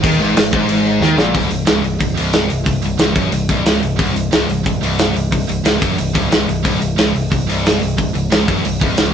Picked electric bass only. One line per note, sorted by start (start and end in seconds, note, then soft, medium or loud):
0.03 0.18 D#2 medium
0.18 0.34 G#1 loud
0.36 0.51 G#1 medium
0.53 0.99 G#1 medium
1.00 1.16 D#2 medium
1.16 1.32 A#1 loud
1.35 1.49 C1 medium
1.49 1.65 C1 medium
1.67 1.82 C#1 medium
1.84 1.99 C1 medium
2.00 2.16 C1 medium
2.18 2.48 C1 medium
2.51 2.65 C1 medium
2.66 2.81 C1 medium
2.84 2.98 C1 medium
2.99 3.15 C#1 loud
3.16 3.31 F#1 medium
3.32 3.48 C1 medium
3.49 3.63 C1 medium
3.64 3.80 C#1 medium
3.82 3.98 C1 medium
3.99 4.13 C1 medium
4.14 4.30 C1 medium
4.32 4.46 C#1 loud
4.47 4.63 C1 medium
4.66 4.80 C1 medium
4.80 5.12 C1 loud
5.15 5.30 C1 medium
5.32 5.47 C1 medium
5.48 5.63 C1 medium
5.63 5.79 C#1 medium
5.81 5.97 F#1 medium
5.99 6.14 C1 medium
6.15 6.30 C1 loud
6.31 6.47 C#1 medium
6.48 6.63 C1 medium
6.65 6.80 C1 medium
6.81 6.96 C1 medium
6.98 7.13 C#1 medium
7.15 7.30 C1 medium
7.31 7.47 C1 medium
7.49 7.79 C1 loud
7.81 7.96 C1 medium
7.98 8.13 C1 medium
8.13 8.29 C1 medium
8.30 8.46 C#1 medium
8.47 8.63 F#1 medium
8.64 8.79 C1 medium
8.81 8.96 C1 loud
8.97 9.13 C#1 medium